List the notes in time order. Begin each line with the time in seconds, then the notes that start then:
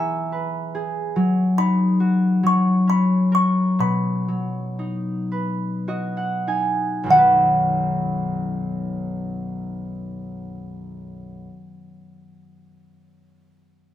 Already playing: E3 B3 G#4 E5 G#5
0.32 B4
0.75 G#4
1.16 F#3
1.58 D#4 B5
2.00 F#4
2.43 F#3 C#6
2.87 C#4 B5
3.32 A#4 C#6
3.79 B2 B5
4.28 F#3
4.79 D#4
5.32 B4
5.88 F#4 D#5
6.17 F#5
6.47 D#4 G#5
7.04 B1 F#2
7.09 D#3 B3 F#5
7.15 F#4 B4